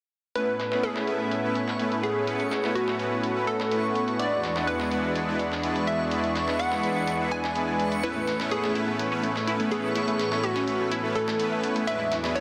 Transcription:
0.35 A2 A3 B3 C#4 E4 B4 C#6, closed hi-hat
0.60 snare, closed hi-hat
0.72 A3 B3 C#4 E4 B4, snare
0.83 G#4, closed hi-hat
0.96 snare
1.07 A3 B3 C#4 E4 B4, closed hi-hat
1.31 closed hi-hat
1.44 A3 B3 C#4 E4 B4
1.55 closed hi-hat
1.68 snare
1.79 A3 B3 C#4 E4 B4, closed hi-hat
1.92 closed hi-hat
2.03 G#4, closed hi-hat
2.27 A3 B3 C#4 E4 F#4 B4, closed hi-hat
2.40 closed hi-hat
2.51 snare, closed hi-hat
2.64 A3 B3 C#4 E4 B4, snare
2.75 F#4, closed hi-hat
2.88 snare
2.99 A3 B3 C#4 E4 B4, closed hi-hat
3.23 closed hi-hat
3.36 A3 B3 C#4 E4 B4
3.47 A4, closed hi-hat
3.60 snare
3.71 A3 B3 C#4 E4 B4, closed hi-hat
3.95 closed hi-hat
4.08 closed hi-hat
4.19 E2 E3 G#3 B3 D4 E4 B4 D5, closed hi-hat
4.44 snare, closed hi-hat
4.56 G#3 B3 D4 E4 B4, snare
4.67 B4, closed hi-hat
4.80 snare
4.91 G#3 B3 D4 E4 B4, closed hi-hat
5.15 closed hi-hat
5.28 G#3 B3 D4 E4 B4
5.39 closed hi-hat
5.52 snare
5.63 G#3 B3 D4 E4 B4, closed hi-hat
5.76 closed hi-hat
5.87 E5, closed hi-hat
6.11 G#3 B3 D4 E4 B4, closed hi-hat
6.24 closed hi-hat
6.35 snare, closed hi-hat
6.48 G#3 B3 D4 E4 B4, snare
6.59 F#5, closed hi-hat
6.72 snare
6.83 G#3 B3 D4 E4 B4, closed hi-hat
7.07 closed hi-hat
7.20 G#3 B3 D4 E4 B4
7.31 G#5, closed hi-hat
7.44 snare
7.55 G#3 B3 D4 E4 B4, closed hi-hat
7.79 closed hi-hat
7.92 closed hi-hat
8.03 A2 A3 B3 C#4 E4 B4, closed hi-hat
8.16 A3
8.27 A3, snare, closed hi-hat
8.40 A3 B3 C#4 E4 B4, snare
8.51 A3 G#4, closed hi-hat
8.64 A3, snare
8.75 A3 B3 C#4 E4 B4, closed hi-hat
8.88 A3
8.99 A3, closed hi-hat
9.12 A3 B3 C#4 E4 B4
9.23 A3, closed hi-hat
9.36 A3, snare
9.47 A3 B3 C#4 E4 B4, closed hi-hat
9.60 A3, closed hi-hat
9.71 A3 G#4, closed hi-hat
9.84 A3
9.95 A3 B3 C#4 E4 B4, closed hi-hat
10.08 A3, closed hi-hat
10.19 snare, closed hi-hat
10.32 A3 B3 C#4 E4 B4, snare
10.43 A3 F#4, closed hi-hat
10.56 C#4, snare
10.67 A3 B3 C#4 E4 B4, closed hi-hat
10.80 A3
10.91 E4, closed hi-hat
11.04 A3 B3 C#4 E4 B4
11.15 A3 A4, closed hi-hat
11.28 A3, snare
11.39 A3 B3 C#4 E4 B4, closed hi-hat
11.52 A3
11.63 A3, closed hi-hat
11.76 A3, closed hi-hat
11.87 E2 F#3 G#3 B3 D4 E4 G#4 B4 E5, closed hi-hat
12.00 E4
12.11 E4, snare, closed hi-hat
12.24 G#3 B3 D4 E4 B4, snare
12.35 E4 C#5, closed hi-hat

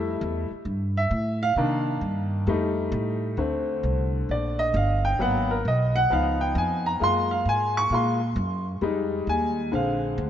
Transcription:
Already playing: F2 G3 A3 E4
0.21 E2
0.51 muted upright bass stroke
0.65 G2
0.97 E5
1.11 A2
1.43 F5
1.56 C3 D#3 A#3 D4
2.01 G2
2.47 F2 G3 A3 D#4
2.92 A2
3.37 D2 D3 A3 C4
3.83 C2
4.29 A#1 D5
4.59 D#5
4.74 G1 F5
5.05 G5
5.19 G#1 F#3 A#3 B3 F#5
5.51 A#4
5.65 B1 D#5
5.96 F#5
6.10 C#2 F3 B3 D#4 F5
6.41 G5
6.55 F2 G#5
6.86 A#5
7.00 F#2 G#3 A#3 F4 C6
7.31 F5
7.45 G#2 G#5
7.77 C#6
7.90 A#2 G#3 A#3 F4 C6
8.36 F#2
8.81 F2 G3 G#3 D#4
9.27 D#2 G#5
9.72 A#1 D3 G#3 C4 F5
10.18 D2

